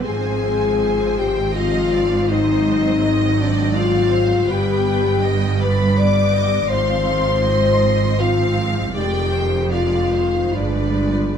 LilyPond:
<<
  \new Staff \with { instrumentName = "Violin section" } { \time 3/4 \key f \dorian \tempo 4 = 80 aes''4. g''8 f''4 | ees''4. d''8 f''4 | g''4. b''8 d'''4 | c'''2 f''8 r8 |
g''4 f''4 d''4 | }
  \new Staff \with { instrumentName = "Violin section" } { \time 3/4 \key f \dorian c''4 c''4 ees''8 d''8 | c''4 ees''4 d''8 c''8 | b'4 ees''8 d''8 b'8 ees''8 | f''4 ees''4 f''4 |
d''8 c''8 d''8 c''8 b'4 | }
  \new Staff \with { instrumentName = "French horn section" } { \time 3/4 \key f \dorian aes'4. g'8 f'4 | ees'4. d'8 f'4 | g'4. b'8 d''4 | c''2 f'8 r8 |
g'4 f'4 d'4 | }
  \new Staff \with { instrumentName = "Viola section" } { \clef bass \time 3/4 \key f \dorian << { c'2 c'4 | c'2. | b2 b4 | c'2 c'4 |
aes4 aes4 aes4 | } \\ { f2 f4 | ges2. | g2 g4 | f2 f4 |
ees4 d8 ees8 f4 | } >> }
  \new Staff \with { instrumentName = "Cello section" } { \clef bass \time 3/4 \key f \dorian aes,2.~ | aes,2. | g,2. | aes,2. |
f,2 g,4 | }
  \new Staff \with { instrumentName = "Double bass section" } { \clef bass \time 3/4 \key f \dorian aes,,2.~ | aes,,2. | g,,2. | aes,,2. |
f,,2 g,,4 | }
>>